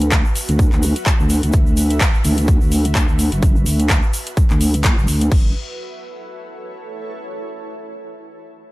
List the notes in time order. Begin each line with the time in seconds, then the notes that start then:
Already playing: D2 F#4 B4 E5
0.02 closed hi-hat, shaker
0.12 kick, clap, closed hi-hat, shaker
0.25 shaker
0.35 open hi-hat, shaker
0.48 D2, closed hi-hat, shaker
0.59 kick, closed hi-hat, shaker
0.72 D2, clap, shaker
0.83 open hi-hat, shaker
0.96 closed hi-hat, shaker
1.06 kick, clap, closed hi-hat, shaker
1.20 D2, shaker
1.30 open hi-hat, shaker
1.43 D2, closed hi-hat, shaker
1.53 D2, kick, closed hi-hat, shaker
1.67 shaker
1.77 open hi-hat, shaker
1.90 closed hi-hat, shaker
2.00 kick, clap, closed hi-hat, shaker
2.14 shaker
2.24 D2, open hi-hat, shaker
2.37 closed hi-hat, shaker
2.48 kick, closed hi-hat, shaker
2.61 D2, shaker
2.72 open hi-hat, shaker
2.85 closed hi-hat, shaker
2.95 kick, clap, closed hi-hat, shaker
3.08 D2, shaker
3.19 open hi-hat, shaker
3.32 F#1, closed hi-hat, shaker
3.43 kick, closed hi-hat, shaker
3.56 shaker
3.66 D2, open hi-hat, shaker
3.80 closed hi-hat, shaker
3.90 kick, clap, closed hi-hat, shaker
4.03 shaker
4.13 open hi-hat, shaker
4.26 closed hi-hat, shaker
4.37 kick, closed hi-hat, shaker
4.50 D2, clap, shaker
4.61 open hi-hat, shaker
4.74 closed hi-hat, shaker
4.84 kick, clap, closed hi-hat, shaker
4.98 F#1, shaker
5.08 D2, open hi-hat, shaker
5.21 closed hi-hat, shaker
5.32 F#1 E4, kick, crash
5.40 A4
5.47 C#5